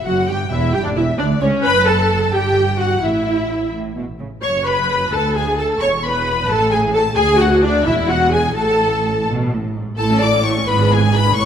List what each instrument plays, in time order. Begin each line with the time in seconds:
0.04 double bass section F#1, cello section F#2, viola section F#4, violin section F#5
0.28 double bass section G1, cello section G2, viola section G4, violin section G5
0.50 double bass section E1, cello section E2, viola section E4, violin section E5
0.73 double bass section G1, cello section G2, viola section G4, violin section G5
0.85 cello section D2, viola section D4, violin section D5
0.95 double bass section E1, cello section E2, viola section E4, violin section E5
1.00 violin section E5
1.18 double bass section D2, cello section D2, viola section D4, violin section D5
1.40 double bass section C#2, cello section C#2, viola section C#4, violin section C#5
1.63 double bass section F#1, cello section F#2, viola section B4, violin section B5
1.87 viola section A4, violin section A5
2.32 double bass section G1, cello section G2, viola section G4, violin section G5
2.79 viola section F#4, violin section F#5
3.02 double bass section A1, cello section A2, viola section E4, violin section E5
3.72 cello section A2
3.96 cello section B2
4.20 cello section C#3
4.42 double bass section F#1, cello section F#2, viola section C#5, violin section C#6
4.66 viola section B4, violin section B5
5.12 double bass section D2, cello section D2, viola section A4, violin section A5
5.35 viola section G#4, violin section G#5
5.58 viola section A4, violin section A5
5.80 double bass section E1, cello section E2, viola section C#5, violin section C#6
6.03 viola section B4, violin section B5
6.48 double bass section A1, cello section A2, viola section A4, violin section A5
6.71 viola section G#4, violin section G#5
6.94 viola section A4, violin section A5
7.16 double bass section D2, cello section D2, viola section G#4, violin section G#5
7.39 viola section F#4, violin section F#5
7.62 viola section D4, violin section D5
7.85 double bass section E1, cello section E2, viola section E4, violin section E5
8.09 viola section F#4, violin section F#5
8.31 viola section G#4, violin section G#5
8.55 double bass section A1, cello section A2, viola section A4, violin section A5
9.27 cello section B2
9.51 cello section A2
9.75 cello section G#2
9.98 double bass section A1, cello section A2, viola section A3 E4, violin section A4 A5
10.11 viola section C#4 A4
10.21 viola section A3 E4, violin section D5 D6
10.33 viola section C#4 A4
10.43 viola section A3 E4, violin section C#5 C#6
10.57 viola section C#4 A4
10.67 double bass section G#1, cello section G#2, viola section B3 E4, violin section B4 B5
10.80 viola section D4 G#4
10.91 viola section B3 E4, violin section G#4 G#5
11.02 viola section D4 G#4
11.14 viola section B3 E4, violin section B4 B5
11.25 viola section D4 G#4
11.35 double bass section A1, cello section A2, viola section A3 E4, violin section C#5 C#6